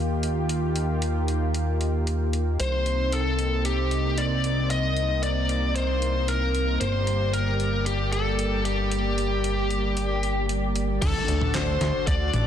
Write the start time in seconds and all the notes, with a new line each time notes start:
Already playing: D#2 D#3 A#3 F4 G4
0.23 closed hi-hat
0.49 closed hi-hat
0.76 closed hi-hat
1.02 closed hi-hat
1.28 closed hi-hat
1.54 closed hi-hat
1.81 closed hi-hat
2.07 closed hi-hat
2.33 closed hi-hat
2.60 C2 C3 A#3 C4 D#4 C5, closed hi-hat
2.86 closed hi-hat
3.12 A4, closed hi-hat
3.39 closed hi-hat
3.65 G4, closed hi-hat
3.91 closed hi-hat
4.18 D5, closed hi-hat
4.44 closed hi-hat
4.70 D#5, closed hi-hat
4.97 closed hi-hat
5.23 D5, closed hi-hat
5.49 closed hi-hat
5.76 C5, closed hi-hat
6.02 closed hi-hat
6.28 A#4, closed hi-hat
6.55 closed hi-hat
6.81 G1 G3 G4 C5 D5, closed hi-hat
7.07 closed hi-hat
7.33 A#4, closed hi-hat
7.60 closed hi-hat
7.86 G4, closed hi-hat
8.13 A4, closed hi-hat
8.39 closed hi-hat
8.65 G4, closed hi-hat
8.91 closed hi-hat
9.18 closed hi-hat
9.44 closed hi-hat
9.70 closed hi-hat
9.97 closed hi-hat
10.23 closed hi-hat
10.49 closed hi-hat
10.76 closed hi-hat
11.02 D2 D3 D4 F#4 A4, kick, closed hi-hat, crash, impact
11.28 D2, closed hi-hat
11.41 mid tom
11.55 D2 C5, snare, clap, closed hi-hat
11.81 D2, snare, closed hi-hat
12.07 D2 D5, kick, closed hi-hat
12.34 A1, closed hi-hat, mid tom